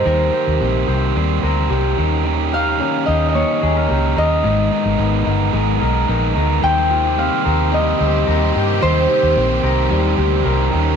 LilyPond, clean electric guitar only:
\new Staff \with { instrumentName = "Clean electric guitar" } { \time 4/4 \key ees \major \tempo 4 = 110 <ees g c' g' bes'>8 g'8 c'8 g'8 g8 bes'8 g'8 ees8 | ees8 g'8 des'8 g'8 bes8 aes'16 bes'16 g'8 bes'8 | aes,8 ees'8 ces'8 ees'8 aes8 bes'8 ees'8 bes'8 | ees8 f'16 g'16 c'8 bes'8 g8 g'8 bes'8 g'8 |
ees8 g'8 c'8 bes'8 g8 g'8 bes'8 ees8 | }